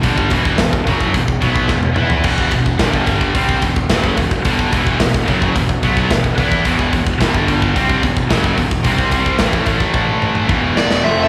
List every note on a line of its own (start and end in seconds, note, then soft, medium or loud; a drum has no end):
0.02 0.30 G1 loud
0.02 0.30 G2 loud
0.02 0.30 D3 loud
0.02 0.30 G3 loud
0.02 kick medium
0.02 open hi-hat medium
0.18 kick medium
0.30 0.57 E1 medium
0.30 0.57 E2 medium
0.30 0.58 B2 loud
0.30 0.58 E3 loud
0.30 kick medium
0.30 open hi-hat medium
0.45 kick medium
0.58 0.85 E1 medium
0.58 0.81 E2 medium
0.58 0.81 B2 medium
0.58 kick medium
0.58 snare loud
0.58 open hi-hat medium
0.73 kick medium
0.87 1.13 F#1 medium
0.87 1.14 F#2 medium
0.87 1.14 C#3 loud
0.87 1.14 F#3 loud
0.87 kick medium
0.87 open hi-hat medium
1.01 kick medium
1.14 1.40 E1 medium
1.14 1.36 E2 medium
1.14 1.37 B2 medium
1.14 kick medium
1.14 open hi-hat medium
1.28 kick medium
1.41 1.68 B1 medium
1.41 1.68 B2 loud
1.41 1.68 F#3 loud
1.41 1.69 B3 loud
1.41 kick medium
1.41 open hi-hat medium
1.56 kick loud
1.68 1.95 E1 medium
1.68 1.91 E2 medium
1.68 1.91 B2 medium
1.68 kick medium
1.68 snare medium
1.83 high tom medium
1.96 2.22 E2 loud
1.96 2.23 E3 medium
1.96 2.23 B3 loud
1.96 2.24 E4 loud
1.96 mid tom medium
2.10 floor tom loud
2.24 2.50 E1 medium
2.24 2.52 E2 medium
2.24 2.51 B2 loud
2.24 2.52 E3 loud
2.24 kick medium
2.24 crash loud
2.38 kick medium
2.51 2.78 E1 medium
2.51 2.75 E2 medium
2.51 2.74 B2 medium
2.51 kick medium
2.51 open hi-hat medium
2.66 kick medium
2.79 3.31 G1 medium
2.79 3.34 G2 medium
2.79 3.34 D3 medium
2.79 3.35 G3 loud
2.79 kick medium
2.79 snare loud
2.79 open hi-hat medium
2.94 kick medium
3.07 kick medium
3.07 open hi-hat medium
3.21 kick medium
3.35 3.61 C2 medium
3.35 3.62 C3 medium
3.35 3.62 G3 loud
3.35 3.63 C4 medium
3.35 kick medium
3.35 open hi-hat medium
3.49 kick medium
3.62 3.88 E1 medium
3.62 3.85 E2 medium
3.62 3.85 B2 medium
3.62 kick medium
3.62 open hi-hat medium
3.76 kick medium
3.89 4.16 F#1 medium
3.89 4.17 F#2 loud
3.89 4.17 C#3 medium
3.89 4.17 F#3 loud
3.89 kick medium
3.89 snare loud
3.89 open hi-hat medium
4.04 kick medium
4.17 4.43 E1 medium
4.17 4.40 E2 medium
4.17 4.40 B2 medium
4.17 kick medium
4.17 open hi-hat medium
4.31 kick medium
4.45 4.71 G1 loud
4.45 4.72 G2 loud
4.45 4.72 D3 loud
4.45 4.72 G3 loud
4.45 kick medium
4.45 open hi-hat medium
4.59 kick medium
4.72 4.98 E1 loud
4.72 4.99 E2 medium
4.72 4.99 B2 loud
4.72 4.99 E3 loud
4.72 kick medium
4.72 open hi-hat medium
4.87 kick medium
5.00 5.26 E1 medium
5.00 5.22 E2 medium
5.00 5.22 B2 medium
5.00 kick medium
5.00 snare loud
5.00 open hi-hat medium
5.14 kick medium
5.28 5.54 F#1 medium
5.28 5.55 F#2 medium
5.28 5.55 C#3 medium
5.28 5.55 F#3 medium
5.28 kick medium
5.28 open hi-hat medium
5.42 kick medium
5.56 5.81 E1 medium
5.56 5.78 E2 medium
5.56 5.78 B2 medium
5.56 kick medium
5.56 open hi-hat medium
5.69 kick medium
5.83 6.08 B1 loud
5.83 6.09 B2 medium
5.83 6.10 F#3 loud
5.83 6.10 B3 loud
5.83 kick medium
5.83 open hi-hat medium
5.97 kick medium
6.10 6.36 E1 medium
6.10 6.32 E2 medium
6.10 6.32 B2 medium
6.10 kick medium
6.10 snare loud
6.10 open hi-hat medium
6.24 kick medium
6.38 6.63 E2 loud
6.38 6.65 E3 medium
6.38 6.65 B3 loud
6.38 6.65 E4 loud
6.38 kick medium
6.38 open hi-hat medium
6.52 kick loud
6.65 6.91 E1 loud
6.65 6.92 E2 medium
6.65 6.93 B2 loud
6.65 6.92 E3 loud
6.65 kick medium
6.65 open hi-hat medium
6.79 kick medium
6.93 7.19 E1 medium
6.93 7.15 E2 medium
6.93 7.16 B2 medium
6.93 kick medium
6.93 open hi-hat medium
7.07 kick medium
7.21 7.72 G1 medium
7.21 7.75 G2 medium
7.21 7.75 D3 medium
7.21 7.75 G3 loud
7.21 kick medium
7.21 snare loud
7.21 open hi-hat medium
7.34 kick medium
7.48 kick medium
7.48 open hi-hat medium
7.62 kick medium
7.76 8.01 C2 medium
7.76 8.02 C3 medium
7.76 8.02 G3 medium
7.76 8.02 C4 loud
7.76 kick medium
7.76 open hi-hat medium
7.89 kick medium
8.03 8.28 E1 medium
8.03 8.24 E2 medium
8.03 8.24 B2 medium
8.03 kick medium
8.03 open hi-hat soft
8.17 kick medium
8.29 8.56 F#1 medium
8.29 8.56 F#2 medium
8.29 8.57 C#3 medium
8.29 8.57 F#3 medium
8.29 kick medium
8.29 snare loud
8.29 open hi-hat medium
8.44 kick medium
8.56 8.83 E1 medium
8.56 8.79 E2 medium
8.56 8.79 B2 medium
8.56 kick medium
8.56 open hi-hat medium
8.71 kick loud
8.83 9.36 C2 medium
8.83 9.38 C3 loud
8.83 9.39 G3 loud
8.83 9.39 C4 loud
8.83 kick medium
8.83 open hi-hat medium
8.98 kick medium
9.11 kick medium
9.11 open hi-hat medium
9.26 kick medium
9.38 10.45 A1 medium
9.38 10.48 A2 loud
9.38 10.48 E3 loud
9.38 10.48 A3 loud
9.38 kick medium
9.38 snare loud
9.38 open hi-hat medium
9.53 kick medium
9.66 kick medium
9.66 open hi-hat medium
9.80 kick medium
9.94 kick medium
9.94 high tom medium
10.22 mid tom medium
10.35 mid tom medium
10.48 11.00 E1 medium
10.48 11.03 E2 medium
10.48 11.03 B2 medium
10.48 11.03 E3 loud
10.48 kick medium
10.48 mid tom medium
10.77 11.05 D5 medium
10.77 snare loud
10.91 snare loud
11.04 11.28 F1 loud
11.04 11.28 F2 medium
11.04 11.28 C3 loud
11.04 11.12 F3 medium
11.04 11.28 F3 medium
11.04 11.28 A3 medium
11.04 11.11 A3 medium
11.04 11.28 C4 medium
11.04 11.28 A4 medium
11.04 11.28 C5 medium
11.04 11.22 E5 loud
11.11 11.20 F3 medium
11.11 11.19 A3 medium
11.20 11.27 F3 medium
11.20 11.28 A3 medium
11.20 11.28 E5 medium